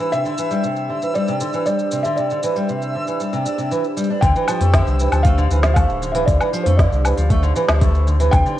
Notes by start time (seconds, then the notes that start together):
Already playing: D4 G4 C5 F5 E6
0.00 E3
0.12 C3 E5, shaker
0.25 D3, shaker
0.38 E3, shaker
0.51 G3, shaker
0.64 C3, shaker
0.76 shaker
0.89 D3
1.02 E3, shaker
1.14 G3 D5, shaker
1.28 C3, shaker
1.40 D3, shaker
1.53 E3, shaker
1.66 G3 D5, shaker
1.79 shaker
1.91 C3, shaker
1.97 E5
2.03 D3 E5, shaker
2.16 C3 D5, shaker
2.30 D3, shaker
2.43 E3, shaker
2.56 G3, shaker
2.69 C3, shaker
2.82 shaker
2.95 D3
3.08 E3, shaker
3.20 G3, shaker
3.33 C3, shaker
3.46 D4, shaker
3.58 C3, shaker
3.71 E3, shaker
3.84 shaker
3.97 G3, shaker
4.10 D4
4.21 D2 D3 G5, kick, open hi-hat, shaker
4.36 E3, shaker
4.48 F3, low woodblock, shaker
4.61 F2 A3, open hi-hat, shaker
4.74 D3, kick, snare, open hi-hat, shaker
4.87 C2, shaker
5.00 E3, shaker
5.12 D2 F3, open hi-hat, low woodblock, shaker
5.17 F5
5.23 A3 F5, kick, open hi-hat, shaker
5.38 D3, shaker
5.51 D2 E3, shaker
5.63 F3, snare, shaker
5.74 A3 F5, kick, open hi-hat, low woodblock, shaker
5.89 D1, shaker
6.02 D3, shaker
6.12 E3 E5, open hi-hat, shaker
6.25 D2 D3 D5, kick, open hi-hat, shaker
6.40 E3, low woodblock, shaker
6.53 F3, shaker
6.63 F2 A3 C5, open hi-hat, shaker
6.77 D3 D5, kick, snare, open hi-hat, shaker
6.92 C2, shaker
7.05 E3, low woodblock, shaker
7.17 D2 F3, open hi-hat, shaker
7.30 A3, kick, open hi-hat, shaker
7.43 D3, shaker
7.56 E3, shaker
7.68 D2 F3, snare, low woodblock, shaker
7.81 A3, kick, open hi-hat, shaker
7.95 shaker
8.07 D3, shaker
8.20 E3, open hi-hat, shaker
8.31 D2 C3 G5, kick, open hi-hat, low woodblock, shaker
8.46 D3, shaker